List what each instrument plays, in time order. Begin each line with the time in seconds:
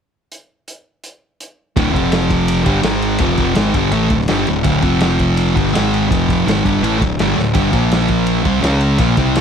0.32 closed hi-hat
0.68 closed hi-hat
1.04 closed hi-hat
1.40 closed hi-hat
1.77 picked electric bass D1, distorted electric guitar D2 A2 D3, kick, ride
1.92 picked electric bass F1, distorted electric guitar F2 C3 F3, kick
1.96 ride
2.12 snare, ride
2.30 kick, ride
2.48 ride
2.64 picked electric bass G1, distorted electric guitar G2 D3 G3, kick, ride
2.83 picked electric bass G#1, distorted electric guitar G#2 D#3 G#3, snare, ride
3.02 ride
3.18 picked electric bass F1, distorted electric guitar F2 C3 F3, kick, ride
3.38 kick, snare, ride
3.55 picked electric bass G#1, distorted electric guitar G#2 D#3 G#3, snare, ride
3.74 picked electric bass G1, distorted electric guitar G2 D3 G3, kick, ride
3.91 picked electric bass A1, distorted electric guitar A2 E3 A3, ride
4.10 picked electric bass D1, distorted electric guitar D2 A2, kick, ride
4.21 snare
4.28 picked electric bass G1, distorted electric guitar G2 D3 G3, snare, ride
4.47 picked electric bass D1, distorted electric guitar D2 A2, ride
4.63 picked electric bass D1, distorted electric guitar D2 A2 D3, kick, ride
4.82 picked electric bass F1, distorted electric guitar F2 C3 F3, kick, ride
5.00 snare, ride
5.19 kick, ride
5.37 ride
5.55 picked electric bass G1, distorted electric guitar G2 D3 G3, kick, ride
5.68 snare
5.73 picked electric bass G#1, distorted electric guitar G#2 D#3 G#3, snare, ride
5.94 ride
6.10 picked electric bass F1, distorted electric guitar F2 C3 F3, kick, ride
6.29 kick, snare, ride
6.46 picked electric bass G#1, distorted electric guitar G#2 D#3 G#3, snare, ride
6.64 picked electric bass G1, distorted electric guitar G2 D3 G3, kick, ride
6.81 picked electric bass A1, distorted electric guitar A2 E3 A3, ride
6.99 picked electric bass D1, distorted electric guitar D2 A2, kick, ride
7.19 picked electric bass G1, distorted electric guitar G2 D3 G3, snare, ride
7.36 picked electric bass D1, distorted electric guitar D2 A2, snare
7.53 picked electric bass G1, distorted electric guitar G2 D3 G3, kick, ride
7.71 picked electric bass A#1, distorted electric guitar A#2 F3 A#3, kick, ride
7.91 snare, ride
8.08 kick, ride
8.26 ride
8.44 picked electric bass C2, distorted electric guitar C3 G3 C4, kick, ride
8.62 picked electric bass C#2, distorted electric guitar C#3 G#3 C#4, snare, ride
8.81 ride
8.98 picked electric bass A#1, distorted electric guitar A#2 F3 A#3, kick, ride
9.17 picked electric bass C2, distorted electric guitar C3 G3 C4, kick, snare, ride
9.35 snare, ride